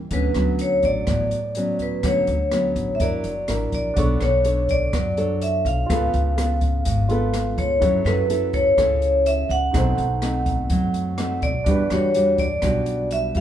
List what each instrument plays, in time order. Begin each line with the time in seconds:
0.11 upright bass D2, nylon-string guitar D3 F#3 B3 C#4, vibraphone B4, kick, closed hi-hat
0.34 upright bass D2, nylon-string guitar F#3 B3 C#4, cross-stick, closed hi-hat
0.59 vibraphone C#5, closed hi-hat
0.83 upright bass A1, vibraphone D5, kick, closed hi-hat
1.07 upright bass A1, nylon-string guitar A2 F#3 B3, kick, cross-stick, closed hi-hat
1.31 closed hi-hat
1.55 nylon-string guitar F#3 B3 C#4, closed hi-hat
1.79 vibraphone B4, kick, closed hi-hat
2.03 upright bass D2, nylon-string guitar D3 F#3 B3 C#4, vibraphone C#5, kick, cross-stick, closed hi-hat
2.27 upright bass D2, closed hi-hat
2.52 nylon-string guitar F#3 B3 C#4, cross-stick, closed hi-hat
2.76 upright bass A1, kick, closed hi-hat
2.95 vibraphone E5
3.00 upright bass F#2, nylon-string guitar F#3 D4 E4 A#4, vibraphone D5, kick, closed hi-hat
3.24 upright bass F#1, closed hi-hat
3.48 upright bass A1, nylon-string guitar D4 E4 A#4, cross-stick, closed hi-hat
3.72 upright bass A#1, vibraphone D5, kick, closed hi-hat
3.94 upright bass B1, nylon-string guitar B3 D4, grand piano D4 F#4, kick, closed hi-hat
3.98 nylon-string guitar A4 C#5, grand piano A4 C#6
4.21 upright bass B1, vibraphone C#5, cross-stick, closed hi-hat
4.45 nylon-string guitar D4 A4 C#5, closed hi-hat
4.69 vibraphone D5, kick, closed hi-hat
4.93 upright bass F#2, nylon-string guitar F#3, kick, cross-stick, closed hi-hat
5.17 nylon-string guitar D4 A4 C#5, closed hi-hat
5.42 vibraphone E5, closed hi-hat
5.65 upright bass B1, vibraphone F5, closed hi-hat
5.86 upright bass C#2, nylon-string guitar C#3, grand piano F4, kick, cross-stick, closed hi-hat
5.90 nylon-string guitar B3 F4 A4, grand piano A4 B4
6.14 upright bass C#2, closed hi-hat
6.37 nylon-string guitar B3 F4 A4, cross-stick, closed hi-hat
6.61 kick, closed hi-hat
6.85 upright bass G#1, nylon-string guitar G#2, kick, closed hi-hat
7.09 nylon-string guitar B3 F4 A4, grand piano F4 A4 B4, closed hi-hat
7.34 cross-stick, closed hi-hat
7.58 upright bass C#2, vibraphone C#5, kick, closed hi-hat
7.79 upright bass F#2, nylon-string guitar F#3 C#4 E4 A4, grand piano E4 F#4 A4, kick, closed hi-hat
7.85 grand piano C#5
8.05 upright bass F#2, nylon-string guitar C#4 E4 A4, vibraphone B4, cross-stick, closed hi-hat
8.29 nylon-string guitar C#4 E4 A4, closed hi-hat
8.53 vibraphone C#5, kick, closed hi-hat
8.78 upright bass C#2, nylon-string guitar C#3 C#4 E4 A4, kick, cross-stick, closed hi-hat
9.02 closed hi-hat
9.26 vibraphone E5, closed hi-hat
9.49 upright bass C#2, vibraphone F#5, closed hi-hat
9.71 upright bass B1, nylon-string guitar B2 A3 C4 D#4, grand piano D#4 F#4, kick, cross-stick, closed hi-hat
9.75 grand piano A4 C5
9.98 upright bass B1, closed hi-hat
10.22 nylon-string guitar A3 C4 D#4, cross-stick, closed hi-hat
10.46 kick, closed hi-hat
10.70 upright bass F#2, nylon-string guitar F#3, kick, closed hi-hat
10.94 closed hi-hat
11.18 nylon-string guitar A3 C4 D#4, cross-stick, closed hi-hat
11.42 upright bass B1, vibraphone D5, kick, closed hi-hat
11.64 upright bass E2, nylon-string guitar E3 G3 D4 F#4, grand piano D4 F#4 G4, kick, closed hi-hat
11.71 grand piano B4
11.90 upright bass E2, nylon-string guitar G3 D4 F#4, vibraphone C#5, cross-stick, closed hi-hat
12.14 nylon-string guitar G3 D4 F#4, closed hi-hat
12.38 vibraphone D5, kick, closed hi-hat
12.62 upright bass B1, nylon-string guitar B2 G3 D4 F#4, kick, cross-stick, closed hi-hat
12.86 closed hi-hat
13.11 vibraphone E5, closed hi-hat
13.35 upright bass E2, nylon-string guitar G3 C#4 F4, vibraphone F5, closed hi-hat